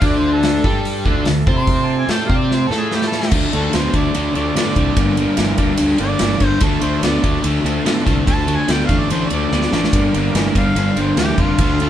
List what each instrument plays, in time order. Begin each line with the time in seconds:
0.01 fingered electric bass D2, overdriven electric guitar D3 D4, tonewheel organ A3 D4 F4 A4, harmonica D5, kick, open hi-hat
0.18 harmonica C5
0.33 harmonica A4
0.43 snare, open hi-hat
0.64 fingered electric bass G2, overdriven electric guitar G3 G4, kick
0.85 open hi-hat
1.05 fingered electric bass D2, overdriven electric guitar D3 D4, tonewheel organ A3 D4 F4 A4, kick
1.25 fingered electric bass D2, overdriven electric guitar D3, snare, open hi-hat
1.47 fingered electric bass C3, overdriven electric guitar C4 C5, kick
1.57 harmonica C6
1.67 tonewheel organ A3 D4 F4 G4, kick, open hi-hat
1.85 harmonica A5
1.99 harmonica G#5
2.08 fingered electric bass A2, overdriven electric guitar A3 A4, harmonica G5, snare, open hi-hat
2.26 fingered electric bass C3, overdriven electric guitar C4 C5, harmonica F5, kick
2.38 harmonica D5
2.51 harmonica C5, snare
2.67 fingered electric bass A2, tonewheel organ A3 D4 F4 A4, overdriven electric guitar A3, harmonica A4
2.71 overdriven electric guitar A4, snare
2.78 harmonica G#4
2.91 harmonica G4, snare
3.02 snare
3.07 harmonica A4
3.12 snare
3.23 snare
3.31 fingered electric bass D2, overdriven electric guitar D3 A3, tonewheel organ A3 D4 F4 A4, kick, crash
3.53 fingered electric bass D2, overdriven electric guitar D3 A3, harmonica A4, ride
3.73 fingered electric bass D2, overdriven electric guitar D3 B3, harmonica C5, snare, ride
3.93 fingered electric bass D2, overdriven electric guitar D3 A3, harmonica D5, kick, ride
4.15 fingered electric bass D2, overdriven electric guitar D3 A3, ride
4.33 fingered electric bass D2, overdriven electric guitar D3 A3, tonewheel organ A3 D4 F4 G4, harmonica D5, ride
4.55 fingered electric bass A2, overdriven electric guitar D3 B3, snare, ride
4.76 fingered electric bass C2, overdriven electric guitar D3 A3, kick, ride
4.96 fingered electric bass G1, overdriven electric guitar G2 D3, tonewheel organ A#3 D4 G4 A#4, kick, ride
5.17 overdriven electric guitar G2 D3, ride
5.37 fingered electric bass G1, overdriven electric guitar G2 E3, snare, ride
5.58 fingered electric bass D2, overdriven electric guitar G2 D3, kick, ride
5.77 fingered electric bass D2, overdriven electric guitar G2 D3, ride
5.98 fingered electric bass G1, overdriven electric guitar G2 D3, tonewheel organ A#3 D4 G4 A#4, harmonica D5, ride
6.19 fingered electric bass G1, overdriven electric guitar G2 E3, snare, ride
6.40 fingered electric bass G1, overdriven electric guitar G2 D3, kick, snare, ride
6.46 harmonica C5
6.60 fingered electric bass D2, overdriven electric guitar D3 A3, tonewheel organ A3 D4 F4 A4, harmonica A4, kick, ride
6.81 fingered electric bass D2, overdriven electric guitar D3 A3, harmonica C5, ride
7.03 fingered electric bass D2, overdriven electric guitar D3 B3, harmonica D5, snare, ride
7.23 fingered electric bass D2, overdriven electric guitar D3 A3, kick, ride
7.44 fingered electric bass D2, overdriven electric guitar D3 A3, ride
7.64 fingered electric bass D2, overdriven electric guitar D3 A3, tonewheel organ A3 D4 F4 A4, ride
7.85 fingered electric bass A2, overdriven electric guitar D3 B3, snare, ride
8.06 fingered electric bass C2, overdriven electric guitar D3 A3, kick, snare, ride
8.26 fingered electric bass D2, overdriven electric guitar D3 A3, tonewheel organ A3 D4 F4 A4, harmonica A5, kick, ride
8.47 overdriven electric guitar D3 A3, ride
8.56 harmonica G#5
8.68 fingered electric bass D2, overdriven electric guitar D3 B3, harmonica G5, snare, ride
8.85 overdriven electric guitar D3, harmonica F5, kick, ride
8.89 fingered electric bass A1, overdriven electric guitar A3
8.99 harmonica D5
9.10 fingered electric bass A1, overdriven electric guitar D3 A3, harmonica C5, ride
9.27 fingered electric bass D2, tonewheel organ A3 D4 G4, harmonica D5, ride
9.32 overdriven electric guitar D3 A3, tonewheel organ F4
9.52 fingered electric bass D2, overdriven electric guitar D3 B3, snare
9.62 snare
9.72 fingered electric bass A1, overdriven electric guitar D3 A3, snare
9.84 snare
9.91 fingered electric bass G1, overdriven electric guitar G2 D3, tonewheel organ A#3 D4 G4 A#4, kick, ride
10.14 fingered electric bass G1, overdriven electric guitar G2 D3, ride
10.35 fingered electric bass G1, overdriven electric guitar G2 E3, snare, ride
10.55 fingered electric bass G1, overdriven electric guitar G2 D3, harmonica F5, kick, ride
10.75 fingered electric bass G1, overdriven electric guitar G2 D3, ride
10.95 fingered electric bass G1, overdriven electric guitar G2 D3, tonewheel organ A#3 D4 G4 A#4, ride
11.00 harmonica C5
11.16 fingered electric bass D2, overdriven electric guitar G2 E3, harmonica G4, snare, ride
11.38 fingered electric bass F1, overdriven electric guitar G2 D3, harmonica F4, kick, ride
11.58 fingered electric bass D2, overdriven electric guitar D3 A3, tonewheel organ A3 D4 F4 A4, kick, ride
11.80 overdriven electric guitar D3 A3, ride